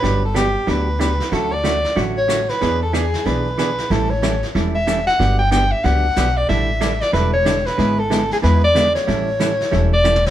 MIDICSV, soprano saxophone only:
0, 0, Header, 1, 2, 480
1, 0, Start_track
1, 0, Tempo, 322928
1, 48, Time_signature, 4, 2, 24, 8
1, 15313, End_track
2, 0, Start_track
2, 0, Title_t, "Soprano saxophone"
2, 0, Program_c, 0, 64
2, 0, Note_on_c, 0, 71, 85
2, 327, Note_off_c, 0, 71, 0
2, 369, Note_on_c, 0, 69, 68
2, 527, Note_off_c, 0, 69, 0
2, 547, Note_on_c, 0, 67, 91
2, 1033, Note_on_c, 0, 71, 89
2, 1056, Note_off_c, 0, 67, 0
2, 1494, Note_off_c, 0, 71, 0
2, 1503, Note_on_c, 0, 71, 83
2, 1981, Note_on_c, 0, 69, 91
2, 2004, Note_off_c, 0, 71, 0
2, 2270, Note_on_c, 0, 74, 99
2, 2293, Note_off_c, 0, 69, 0
2, 2979, Note_off_c, 0, 74, 0
2, 3232, Note_on_c, 0, 73, 104
2, 3711, Note_on_c, 0, 71, 105
2, 3733, Note_off_c, 0, 73, 0
2, 4187, Note_off_c, 0, 71, 0
2, 4194, Note_on_c, 0, 69, 80
2, 4366, Note_on_c, 0, 68, 91
2, 4389, Note_off_c, 0, 69, 0
2, 4847, Note_on_c, 0, 71, 95
2, 4869, Note_off_c, 0, 68, 0
2, 5326, Note_off_c, 0, 71, 0
2, 5339, Note_on_c, 0, 71, 95
2, 5815, Note_on_c, 0, 69, 97
2, 5837, Note_off_c, 0, 71, 0
2, 6099, Note_on_c, 0, 73, 97
2, 6122, Note_off_c, 0, 69, 0
2, 6640, Note_off_c, 0, 73, 0
2, 7062, Note_on_c, 0, 76, 111
2, 7508, Note_off_c, 0, 76, 0
2, 7530, Note_on_c, 0, 78, 105
2, 7982, Note_off_c, 0, 78, 0
2, 8011, Note_on_c, 0, 79, 100
2, 8185, Note_off_c, 0, 79, 0
2, 8202, Note_on_c, 0, 79, 104
2, 8495, Note_on_c, 0, 76, 105
2, 8517, Note_off_c, 0, 79, 0
2, 8684, Note_on_c, 0, 78, 116
2, 8707, Note_off_c, 0, 76, 0
2, 9468, Note_on_c, 0, 74, 91
2, 9491, Note_off_c, 0, 78, 0
2, 9635, Note_off_c, 0, 74, 0
2, 9644, Note_on_c, 0, 76, 111
2, 10429, Note_on_c, 0, 74, 104
2, 10451, Note_off_c, 0, 76, 0
2, 10592, Note_off_c, 0, 74, 0
2, 10601, Note_on_c, 0, 71, 96
2, 10879, Note_off_c, 0, 71, 0
2, 10900, Note_on_c, 0, 73, 104
2, 11386, Note_on_c, 0, 71, 97
2, 11408, Note_off_c, 0, 73, 0
2, 11877, Note_on_c, 0, 69, 93
2, 11899, Note_off_c, 0, 71, 0
2, 12372, Note_off_c, 0, 69, 0
2, 12379, Note_on_c, 0, 68, 94
2, 12448, Note_off_c, 0, 68, 0
2, 12532, Note_on_c, 0, 71, 99
2, 12826, Note_off_c, 0, 71, 0
2, 12843, Note_on_c, 0, 74, 104
2, 13270, Note_off_c, 0, 74, 0
2, 13303, Note_on_c, 0, 73, 98
2, 14685, Note_off_c, 0, 73, 0
2, 14764, Note_on_c, 0, 74, 108
2, 15250, Note_on_c, 0, 73, 97
2, 15272, Note_off_c, 0, 74, 0
2, 15313, Note_off_c, 0, 73, 0
2, 15313, End_track
0, 0, End_of_file